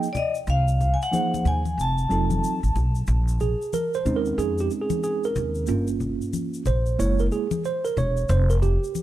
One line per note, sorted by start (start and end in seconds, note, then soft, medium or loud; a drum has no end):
0.00 0.14 G5 medium
0.00 shaker soft
0.13 0.16 D5 medium
0.13 low conga medium
0.13 shaker soft
0.17 0.31 D#5 medium
0.35 shaker soft
0.47 0.93 C2 loud
0.47 0.94 F5 loud
0.47 shaker soft
0.68 shaker soft
0.81 low conga soft
0.81 shaker soft
0.94 1.01 G#5 medium
1.02 1.48 F#5 medium
1.02 shaker soft
1.11 1.61 F3 medium
1.11 1.61 A#3 medium
1.11 1.61 D#4 medium
1.11 1.62 G#4 medium
1.11 1.62 C5 medium
1.11 high conga soft
1.11 shaker medium
1.34 high conga medium
1.34 shaker soft
1.45 1.73 D#2 medium
1.45 1.80 G#5 medium
1.45 low conga medium
1.45 shaker soft
1.65 high conga medium
1.65 shaker soft
1.78 2.06 F1 medium
1.78 2.73 A5 medium
1.78 shaker medium
1.98 shaker soft
2.09 2.39 F1 medium
2.09 2.58 F#3 medium
2.09 2.59 C4 medium
2.09 2.59 D#4 medium
2.09 2.60 F4 medium
2.09 2.60 A4 medium
2.09 shaker soft
2.30 high conga medium
2.30 shaker soft
2.44 shaker medium
2.63 2.74 A1 medium
2.63 shaker soft
2.76 3.04 B1 medium
2.76 low conga medium
2.76 shaker soft
2.95 shaker soft
3.07 3.53 A#1 loud
3.07 shaker soft
3.28 shaker medium
3.40 3.74 G#4 medium
3.40 low conga soft
3.40 shaker soft
3.62 shaker soft
3.73 3.96 A#4 medium
3.73 high conga soft
3.73 shaker medium
3.94 4.17 C5 medium
3.94 shaker soft
4.05 4.34 D#2 medium
4.05 5.65 G#3 medium
4.05 5.65 C4 medium
4.05 5.65 C#4 soft
4.05 5.65 D#4 medium
4.05 low conga medium
4.05 shaker soft
4.16 4.39 A#4 medium
4.25 shaker soft
4.38 4.66 F2 medium
4.38 4.59 G#4 medium
4.38 shaker medium
4.58 4.70 G4 medium
4.58 shaker soft
4.70 shaker soft
4.81 5.02 G#4 medium
4.90 high conga medium
4.90 shaker soft
5.03 5.26 G#4 medium
5.03 shaker medium
5.23 5.87 A#4 medium
5.23 shaker soft
5.36 5.64 D#2 medium
5.36 low conga medium
5.36 shaker soft
5.54 shaker soft
5.67 6.14 G1 medium
5.67 6.62 A#3 medium
5.67 6.62 C#4 medium
5.67 6.63 F4 medium
5.67 shaker soft
5.87 shaker soft
6.00 low conga soft
6.00 shaker soft
6.21 shaker soft
6.33 high conga soft
6.33 shaker medium
6.54 shaker soft
6.66 6.95 A#1 medium
6.66 7.01 C5 medium
6.66 low conga medium
6.66 shaker soft
6.86 shaker soft
6.99 7.27 F#1 medium
6.99 7.45 G#3 medium
6.99 7.45 A#3 medium
6.99 7.46 E4 medium
6.99 7.20 C#5 medium
6.99 shaker medium
7.19 7.26 A#4 medium
7.19 shaker soft
7.32 7.63 G#4 medium
7.32 shaker soft
7.51 high conga medium
7.51 shaker medium
7.64 7.86 C5 medium
7.64 shaker medium
7.85 7.96 A#4 medium
7.85 shaker soft
7.97 8.25 E1 medium
7.97 8.31 C#5 medium
7.97 low conga medium
7.97 shaker soft
8.17 shaker soft
8.29 8.75 F1 loud
8.29 8.51 C5 medium
8.29 shaker soft
8.50 8.56 A#4 medium
8.50 shaker medium
8.62 9.03 G4 medium
8.62 low conga soft
8.62 shaker soft
8.84 shaker soft
8.95 high conga soft
8.95 shaker medium